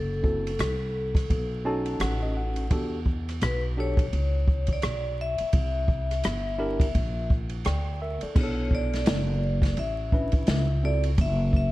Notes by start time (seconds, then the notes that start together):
Already playing: F#1 A4
0.23 C4 E4 F#4 A4, kick
0.47 ride
0.59 C2, cross-stick, hi-hat pedal, ride
1.15 kick, cross-stick, ride
1.30 B1, kick, ride
1.65 C#4 D#4 F#4 A4 A5
1.86 ride
2.00 A1 F#5, cross-stick, hi-hat pedal, ride
2.22 D#5
2.37 F#5
2.56 ride
2.71 E2 D4 F#4 G4 A4, kick, ride
3.06 kick
3.29 cross-stick, ride
3.41 B1 B4, cross-stick, hi-hat pedal, ride
3.77 D4 F#4 G4 A4 C#5
3.97 kick, ride
4.13 C#2, ride
4.48 kick
4.67 kick, ride
4.73 D5
4.82 B1, cross-stick, hi-hat pedal, ride
5.21 E5
5.38 muted upright bass stroke, ride
5.53 C2, kick, ride
5.88 kick
6.11 cross-stick, ride
6.24 G1, cross-stick, hi-hat pedal, ride
6.59 D4 E4 G4 A#4
6.80 kick, ride
6.95 A#1, kick, ride
7.30 kick
7.49 ride
7.65 D2 D5 G5, cross-stick, hi-hat pedal, ride
8.02 A#4 E5
8.21 A4 D5, muted upright bass stroke, ride
8.35 B1 B3 D4 E4 G#4, kick, crash
8.41 A4 C#5
8.71 D5, kick
8.93 snare, ride
9.06 F#1, snare, hi-hat pedal, ride
9.62 kick, snare, ride
9.77 A1 E5, ride
10.12 C#4 D4 E4 B4, kick
10.32 kick, ride
10.47 C#2, snare, hi-hat pedal, ride
10.83 C4 E4 F#4 A4 D5
11.03 ride
11.18 F#1 E5, kick, ride
11.53 E5, kick